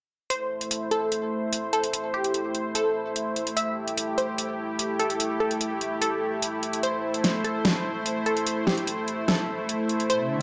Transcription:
0.30 A3 E4 C5, closed hi-hat
0.61 closed hi-hat
0.71 closed hi-hat
0.91 A4, closed hi-hat
1.12 closed hi-hat
1.53 closed hi-hat
1.73 A4, closed hi-hat
1.84 closed hi-hat
1.93 closed hi-hat
2.14 G4
2.24 closed hi-hat
2.34 closed hi-hat
2.55 closed hi-hat
2.75 A4, closed hi-hat
3.16 closed hi-hat
3.36 closed hi-hat
3.47 closed hi-hat
3.57 G4 E5, closed hi-hat
3.88 closed hi-hat
3.98 closed hi-hat
4.18 C5, closed hi-hat
4.38 closed hi-hat
4.79 closed hi-hat
4.99 A4, closed hi-hat
5.10 closed hi-hat
5.20 closed hi-hat
5.40 A4
5.51 closed hi-hat
5.61 closed hi-hat
5.81 closed hi-hat
6.02 A4, closed hi-hat
6.42 closed hi-hat
6.63 closed hi-hat
6.73 closed hi-hat
6.83 C5, closed hi-hat
7.14 closed hi-hat
7.24 snare, closed hi-hat
7.44 A4, closed hi-hat
7.65 snare, closed hi-hat
8.06 closed hi-hat
8.26 A4, closed hi-hat
8.37 closed hi-hat
8.47 closed hi-hat
8.67 G4, snare
8.77 closed hi-hat
8.87 closed hi-hat
9.08 closed hi-hat
9.28 A4, snare, closed hi-hat
9.69 closed hi-hat
9.89 closed hi-hat
10.00 closed hi-hat
10.10 C5 E5, closed hi-hat, riser

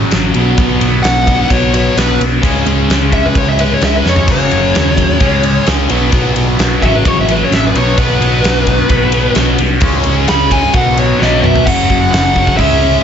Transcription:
Already playing: F#2 C#3 F#3
0.11 A1 F#2 C#3 F#3, snare, ride
0.34 B1 B2 F#3 B3, ride
0.58 B1 B2 F#3 B3, kick, ride
0.81 B1 B2 F#3 B3, ride
1.03 B1 B2 F#3 B3 F#5, snare, ride
1.27 B2 F#3 B3, kick, ride
1.50 B1 B2 F#3 B3 C#5, kick, ride
1.72 B2 F#3 B3 C#5, ride
1.96 B1 B2 F#3 B3 B4, snare, ride
2.20 B1 B2 F#3 B3, ride
2.43 C#2 C#3 G#3 C#4, kick, ride
2.65 C#2 C#3 G#3 C#4, ride
2.89 C#2 C#3 G#3 C#4, snare, ride
3.12 C#3 G#3 C#4 E5, kick, ride
3.26 B4
3.35 C#2 C#3 G#3 C#4 C#5, kick, ride
3.49 E5
3.59 C#3 G#3 C#4 B4, ride
3.74 C#5
3.81 C#2 C#3 G#3 C#4 E5, snare, ride
3.97 B4
4.05 F2 C#3 G#3 C#4, snare
4.09 C#5
4.16 floor tom
4.28 F#1 F#2 C#3 F#3, kick, ride, crash
4.32 C#5
4.51 F#1 F#2 C#3 F#3, ride
4.74 D#2 F#2 C#3 F#3, snare, ride
4.97 F#2 C#3 F#3, kick, ride
5.19 C#2 C#3 G#3 C#4, kick, ride
5.43 C#3 G#3 C#4, ride
5.65 C#2 C#3 G#3 C#4, snare, ride
5.89 B1 B2 F#3 B3, ride
6.12 B1 B2 F#3 B3, kick, ride
6.35 B1 B2 F#3 B3, ride
6.59 B1 B2 F#3 B3, snare, ride
6.82 A1 F#2 C#3 F#3 E5, kick, ride
6.96 B4
7.05 A1 F#2 C#3 F#3 C#5, kick, ride
7.21 E5
7.28 F#2 C#3 F#3 B4, ride
7.44 C#5
7.51 A1 F#2 C#3 F#3 E5, snare, ride
7.67 B4
7.74 B1 B2 F#3 B3 C#5, ride
7.97 B1 B2 F#3 B3 B4, kick, ride
8.20 B1 B2 F#3 B3, ride
8.43 B1 B2 F#3 B3, snare, ride
8.67 B2 F#3 B3, kick, ride
8.89 B1 B2 F#3 B3, kick, ride
9.12 B2 F#3 B3, ride
9.35 B1 B2 F#3 B3, snare, ride
9.58 C2 B2 F#3 B3, ride
9.80 C#2 C#3 G#3 C#4, kick, ride
10.04 C#2 C#3 G#3 C#4, ride
10.28 C#2 C#3 G#3 C#4 B5, snare, ride
10.51 C#3 G#3 C#4 G#5, kick, ride
10.73 B1 B2 F#3 B3 F#5, kick, ride
10.97 B2 F#3 B3 C#5, ride
11.19 B1 B2 F#3 B3 C#5 D#5, snare
11.42 B1 B2 F#3 B3 E5, mid tom
11.56 floor tom
11.66 F#1 F#2 C#3 F#3 F#5, kick, crash
11.90 F#1 F#2 C#3 F#3, kick
12.11 F#1 F#2 C#3 F#3 F#5, snare, open hi-hat
12.36 F#2 C#3 F#3, kick
12.47 kick
12.57 C#2 C#3 G#3 C#4 E5, kick, open hi-hat
12.82 C#3 G#3 C#4

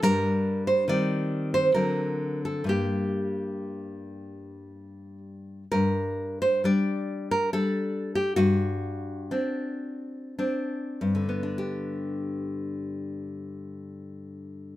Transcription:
0.03 G2 G3 D4 A#4
0.67 C5
0.88 D#3 G3 C4 D5
1.54 C5
1.74 D3 F#3 C4 A#4
2.45 A4
2.64 G2 G3 A#3
2.69 G4
5.72 G2 A#4
6.42 C5
6.64 G3 D4 D5
7.31 A#4
7.53 G3 D4 A4
8.15 G4
8.36 G2 F#4
9.31 C4 D4
10.39 C4 D4
11.01 G2
11.15 D3
11.29 B3
11.43 D4
11.58 G4

